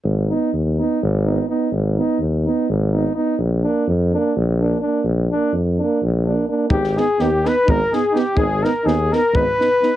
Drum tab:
SD |--------------|--------------|--------------|--------------|
BD |--------------|--------------|--------------|--------------|

SD |-oo-o-o---o-o-|--o-o-o---o-o-|
BD |o-------o-----|o-------o-----|